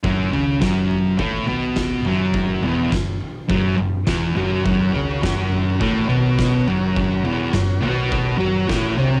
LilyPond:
<<
  \new Staff \with { instrumentName = "Transistor combo organ" } { \time 4/4 \key fis \mixolydian \tempo 4 = 104 r1 | r1 | <fis' ais' cis''>1~ | <fis' ais' cis''>1 | }
  \new Staff \with { instrumentName = "Distorted electric guitar" } { \clef bass \time 4/4 \key fis \mixolydian <fis, fis>8 <cis cis'>8 <fis, fis>4 <a, a>8 <b, b>4 <fis, fis>8~ | <fis, fis>8 <e, e>8 fis,8 r8 <fis, fis>8 fis,8 <e, e>8 <fis, fis>8 | <fis, fis>8 <cis cis'>8 <fis, fis>4 <a, a>8 <b, b>4 <fis, fis>8~ | <fis, fis>8 <e, e>8 fis,8 <b, b>4 <fis fis'>8 <a, a>8 <bis, bis>8 | }
  \new Staff \with { instrumentName = "Picked electric bass" } { \clef bass \time 4/4 \key fis \mixolydian fis,,8 cis,8 fis,,4 a,,8 b,,4 fis,,8~ | fis,,8 e,,8 fis,,8 r8 fis,,8 fis,,8 e,,8 fis,,8 | fis,,8 cis,8 fis,,4 a,,8 b,,4 fis,,8~ | fis,,8 e,,8 fis,,8 b,,4 fis,8 a,,8 bis,,8 | }
  \new DrumStaff \with { instrumentName = "Drums" } \drummode { \time 4/4 <bd tomfh>8 tomfh8 <bd sn tomfh>8 tomfh8 <bd tomfh>8 tomfh8 <bd sn tomfh>8 tomfh8 | <bd tomfh>8 tomfh8 <bd sn tomfh>8 tomfh8 <bd tomfh>8 tomfh8 <bd sn tomfh>8 tomfh8 | <bd tomfh>8 tomfh8 <bd sn tomfh>8 tomfh8 <bd tomfh>8 tomfh8 <bd sn tomfh>8 tomfh8 | <bd tomfh>8 tomfh8 <bd sn tomfh>8 tomfh8 <bd tomfh>8 tomfh8 <bd sn tomfh>8 tomfh8 | }
>>